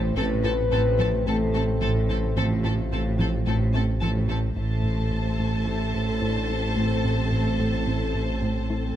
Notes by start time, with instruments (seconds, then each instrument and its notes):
Already playing: tuba A1, sub bass A1, trombone section E3 C4, french horn section C5
0.16 sub bass A1, double bass section A1, tuba A1, cello section A2, analog synth bass A2, trombone section C3 C4, synth pluck F3, viola section C4, violin section A4 A5, french horn section B4
0.44 analog synth bass A2, viola section C4, synth pluck F4, violin section A4 A5
0.72 tuba A1, double bass section A1, cello section A2, analog synth bass A2, viola section C4, violin section A4 A5
0.99 analog synth bass A2, synth pluck F3, viola section C4, violin section A4 A5
1.26 tuba A1, double bass section A1, analog synth bass A2, cello section A2, synth pluck A3, viola section C4, french horn section A4, violin section A4 A5
1.54 analog synth bass A3, synth pluck C4, viola section C4, violin section A4 A5
1.81 double bass section A1, tuba A1, analog synth bass A2, cello section A2, synth pluck F3, viola section C4, violin section A4 A5
2.09 analog synth bass A2, synth pluck A3, viola section C4, violin section A4 A5
2.36 double bass section A1, tuba A1, analog synth bass A2, cello section A2, synth pluck F3, viola section C4, french horn section F4, violin section A4 A5
2.64 analog synth bass A2, viola section C4, synth pluck F4, violin section A4 A5
2.91 double bass section A1, tuba A1, analog synth bass A2, cello section A2, viola section C4, violin section A4 A5
3.19 analog synth bass A2, synth pluck F3, viola section C4, violin section A4 A5
3.46 double bass section A1, tuba A1, analog synth bass A2, cello section A2, synth pluck A3, viola section C4, violin section A4 A5
3.74 analog synth bass A3, synth pluck C4, viola section C4, violin section A4 A5
4.02 double bass section A1, tuba A1, analog synth bass A2, cello section A2, synth pluck F3, viola section C4, violin section A4 A5
4.29 analog synth bass A2, synth pluck A3, viola section C4, violin section A4 A5
4.56 sub bass A1, double bass section A1, tuba A1, analog synth bass A2, cello section A2, trombone section A2 C4, french horn section A3, synth pluck A3, viola section A4, violin section C5 A5
4.84 analog synth bass A2, synth pluck C4
5.11 analog synth bass A2
5.39 analog synth bass A2, synth pluck A3
5.66 analog synth bass A2, synth pluck C4, french horn section E4
5.94 analog synth bass A2, synth pluck A4
6.22 analog synth bass A2, synth pluck A3, french horn section D4
6.49 analog synth bass A3, french horn section C4, synth pluck E4
6.65 french horn section D4
6.77 analog synth bass A2, synth pluck A3, french horn section C4
7.04 analog synth bass A2, synth pluck C4
7.32 analog synth bass A2
7.59 analog synth bass A2, synth pluck A3
7.87 analog synth bass A2, synth pluck C4, french horn section C4
8.15 analog synth bass A2, synth pluck A4
8.42 analog synth bass A2, synth pluck A3
8.70 analog synth bass A3, synth pluck E4